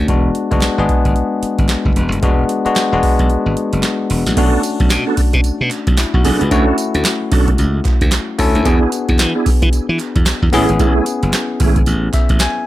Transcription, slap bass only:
0.08 0.29 E1 loud
0.52 0.60 F#1 medium
0.78 0.86 G#1 medium
1.05 1.13 G#1 medium
1.43 muted slap bass stroke soft
1.59 1.67 G#1 medium
1.85 1.94 F#1 medium
1.96 2.09 E1 medium
2.12 2.20 F#1 medium
2.23 2.44 E1 loud
2.66 muted slap bass stroke soft
2.93 3.01 E1 medium
3.19 3.28 B1 medium
3.46 3.54 G#1 medium
3.73 3.81 F#1 medium
4.10 4.23 E1 medium
4.26 4.35 A1 medium
4.37 4.50 B1 loud
4.80 4.88 B1 medium
4.90 5.03 B2 loud
5.18 muted slap bass stroke soft
5.33 5.42 B2 loud
5.44 muted slap bass stroke soft
5.61 5.69 B2 medium
5.87 5.95 B1 loud
6.14 6.22 B1 loud
6.25 6.37 B1 medium
6.41 6.49 C#2 medium
6.51 6.64 D2 loud
6.95 7.03 D2 medium
7.32 7.53 B1 medium
7.59 7.79 C#2 loud
8.01 8.10 D2 medium
8.39 8.52 D2 medium
8.55 8.63 D2 loud
8.66 8.78 E2 loud
9.09 9.17 E2 loud
9.19 9.32 E3 loud
9.46 muted slap bass stroke medium
9.62 9.70 E3 loud
9.73 muted slap bass stroke soft
9.89 9.97 E3 medium
10.16 10.24 E2 loud
10.42 10.51 E2 loud
10.53 10.66 A1 medium
10.69 10.77 G#1 medium
10.80 10.92 A1 loud
11.23 11.31 F#1 medium
11.60 11.81 G#1 medium
11.87 12.08 A1 loud
12.30 12.38 A1 medium

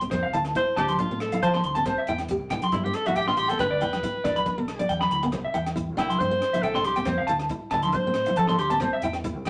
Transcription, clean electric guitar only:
0.11 0.21 C5 medium
0.23 0.32 F5 medium
0.33 0.43 A5 medium
0.77 0.86 A5 medium
0.89 0.97 C6 medium
1.32 1.41 F5 medium
1.43 1.52 A5 medium
1.54 1.63 C6 medium
1.64 1.74 C6 medium
1.75 1.84 A5 medium
1.86 1.96 C5 medium
1.98 2.06 E5 medium
2.09 2.18 G5 medium
2.51 2.61 G5 medium
2.64 2.72 C6 medium
3.06 3.15 E5 medium
3.16 3.26 G5 medium
3.28 3.36 C6 medium
3.38 3.48 C6 medium
3.48 3.58 G5 medium
3.59 3.69 B4 medium
3.71 3.79 D5 medium
3.81 3.91 G5 medium
4.24 4.34 D5 medium
4.36 4.45 B5 medium
4.79 4.88 D5 medium
4.89 4.99 G5 medium
5.01 5.10 B5 medium
5.12 5.22 B5 medium
5.23 muted clean electric guitar stroke loud
5.33 muted clean electric guitar stroke medium
5.45 5.53 E5 medium
5.54 5.64 G5 medium
5.98 6.08 G5 medium
6.10 6.19 C6 medium
6.53 6.62 E5 medium
6.64 6.74 G5 medium
6.75 6.84 C6 medium
6.85 6.95 C6 medium
6.96 7.05 G5 medium
7.06 7.16 C5 medium
7.18 7.27 F5 medium
7.27 7.38 A5 medium
7.71 7.82 A5 medium
7.83 7.92 C6 medium
8.27 muted clean electric guitar stroke medium
8.37 8.47 A5 medium
8.49 8.58 C6 medium
8.59 8.69 C6 medium
8.70 8.79 A5 loud
8.81 8.91 C5 medium
8.93 9.02 E5 medium
9.03 9.13 G5 medium

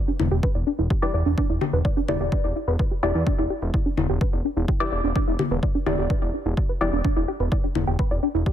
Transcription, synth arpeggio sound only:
0.08 0.11 D4 medium
0.20 0.27 E4 medium
0.31 0.37 G4 loud
0.43 0.51 B4 medium
0.55 0.60 D5 medium
0.67 0.72 D4 medium
0.79 0.84 E4 medium
0.90 0.96 G4 medium
1.02 1.05 B4 medium
1.14 1.19 D5 medium
1.26 1.31 D4 medium
1.38 1.46 D4 medium
1.50 1.55 E4 medium
1.61 1.64 G4 loud
1.73 1.78 B4 medium
1.85 1.90 D5 medium
1.97 2.00 D4 medium
2.09 2.16 E4 medium
2.20 2.26 G4 loud
2.32 2.40 B4 medium
2.44 2.49 D5 medium
2.56 2.59 E4 medium
2.68 2.73 B4 loud
2.79 2.85 B4 medium
2.91 2.94 G4 medium
3.03 3.06 E5 medium
3.15 3.23 E4 medium
3.27 3.35 D4 medium
3.39 3.44 E4 loud
3.50 3.53 G4 medium
3.62 3.67 B4 medium
3.74 3.79 D5 medium
3.86 3.89 D4 medium
3.97 4.05 E4 medium
4.09 4.15 G4 loud
4.21 4.29 B4 medium
4.33 4.38 D5 medium
4.45 4.50 D4 medium
4.57 4.62 E4 medium
4.68 4.74 G4 medium
4.80 4.83 B4 medium
4.92 4.97 D5 medium
5.04 5.09 D4 medium
5.16 5.23 D4 medium
5.28 5.33 E4 loud
5.39 5.42 G4 loud
5.51 5.56 B4 medium
5.63 5.68 D5 medium
5.75 5.78 D4 medium
5.87 5.94 E4 medium
5.98 6.04 G4 loud
6.10 6.18 B4 medium
6.22 6.27 D5 medium
6.34 6.39 D4 medium
6.46 6.51 E4 medium
6.57 6.63 G4 medium
6.69 6.72 B4 medium
6.81 6.86 D5 medium
6.93 6.98 D4 medium
7.05 7.12 D4 medium
7.17 7.22 E4 loud
7.28 7.31 G4 loud
7.40 7.45 B4 medium
7.52 7.57 D5 medium
7.64 7.67 D4 medium
7.75 7.83 E4 medium
7.87 7.93 G4 loud
7.99 8.07 B4 medium
8.11 8.16 D5 medium
8.23 8.28 D4 medium
8.35 8.40 E4 medium
8.46 8.52 G4 medium

